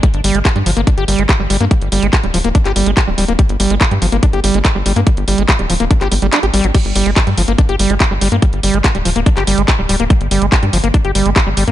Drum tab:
CC |----------------|----------------|----------------|----------------|
HH |xxoxxxoxxxoxx-o-|xxoxxxoxxxoxx-ox|xxoxxxoxxxoxx-ox|xxoxxxoxxxoxxxox|
CP |----x-------x---|----x----x--x---|----x-------x---|----x----x--x---|
BD |o---o---o---o---|o---o---o---o---|o---o---o---o---|o---o---o-------|

CC |x---------------|----------------|----------------|
HH |xxoxxxoxxxoxx-ox|xxoxxxoxxxoxx-ox|xxoxxxoxxxoxx-ox|
CP |----x-------x---|----x----x--x---|----x-------x---|
BD |o---o---o---o---|o---o---o---o---|o---o---o---o---|